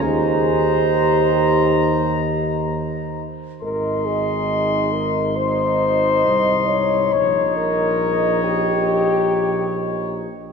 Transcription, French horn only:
\new Staff \with { instrumentName = "French horn" } { \time 4/4 \key ees \mixolydian \tempo 4 = 68 aes'4 g'2 r4 | bes'8 aes'4 bes'8 c''4. des''8~ | des''8 bes'4 g'2 r8 | }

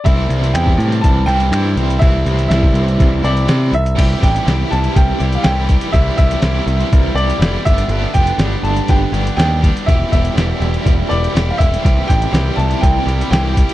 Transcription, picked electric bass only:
\new Staff \with { instrumentName = "Picked electric bass" } { \clef bass \time 4/4 \key c \major \tempo 4 = 122 c,8 c,8 e,8 a,8 c,8 c,8 g,8 c,8 | c,8 c,8 c,8 c,8 c,8 c,8 c8 c,8 | c,8 a,,8 c,8 c,8 c,8 c,8 c,4 | c,8 c,8 c,8 c,8 c,8 c,8 f,,8 g,,8 |
g,,8 f,,8 g,,8 g,,8 g,,8 g,,8 ees,4 | e,,8 e,,8 e,,8 e,,8 e,,8 e,,8 e,,8 e,,8 | c,8 a,,8 c,8 c,8 c,8 c,8 c,4 | }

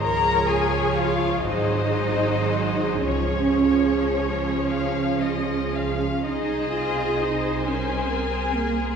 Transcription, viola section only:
\new Staff \with { instrumentName = "Viola section" } { \time 6/8 \key des \major \tempo 4. = 41 << { aes'4. aes'4. | aes'2. | c''2. | } \\ { f4. ges4. | f2. | aes'4. bes'4. | } >> }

